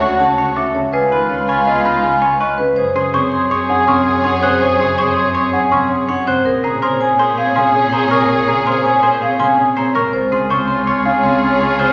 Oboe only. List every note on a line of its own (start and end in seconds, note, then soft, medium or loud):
0.01 0.14 F#4 medium
0.19 0.32 F#4 medium
0.37 0.50 F#4 medium
0.55 0.68 F#4 soft
0.92 1.05 F4 soft
1.11 1.24 F4 medium
1.29 1.42 F4 medium
1.48 1.61 F4 medium
1.66 1.79 F4 medium
1.85 1.98 F4 medium
2.03 2.16 F4 medium
2.22 2.35 F4 medium
2.40 2.53 F4 soft
2.77 2.90 G#4 soft
2.96 3.08 G#4 medium
3.14 3.27 G#4 medium
3.33 3.45 G#4 medium
3.50 3.63 G#4 medium
3.69 3.82 G#4 medium
3.87 4.00 G#4 medium
4.05 4.19 G#4 medium
4.24 4.37 G#4 loud
4.42 4.55 G#4 medium
4.61 4.74 G#4 medium
4.80 4.93 G#4 medium
4.99 5.11 G#4 medium
5.16 5.29 G#4 medium
5.35 5.48 G#4 medium
5.53 5.66 G#4 medium
5.72 5.85 G#4 medium
5.89 6.02 G#4 medium
6.09 6.22 G#4 soft
6.46 6.58 G#4 soft
6.64 6.77 G#4 medium
6.83 6.95 G#4 medium
7.01 7.14 G#4 medium
7.19 7.32 G#4 medium
7.38 7.51 G#4 medium
7.58 7.70 G#4 medium
7.75 7.87 G#4 medium
7.93 8.06 G#4 medium
8.12 8.24 G#4 medium
8.31 8.43 G#4 medium
8.48 8.61 G#4 medium
8.68 8.80 G#4 medium
8.86 8.98 G#4 medium
9.03 9.16 G#4 medium
9.21 9.34 G#4 medium
9.40 9.53 G#4 medium
9.58 9.71 G#4 medium
9.76 9.89 G#4 soft
10.14 10.26 F4 soft
10.32 10.45 F4 medium
10.50 10.63 F4 medium
10.68 10.81 F4 medium
10.88 11.00 F4 medium
11.05 11.18 F4 medium
11.24 11.37 F4 medium
11.42 11.55 F4 medium
11.61 11.74 F4 medium
11.80 11.92 F4 loud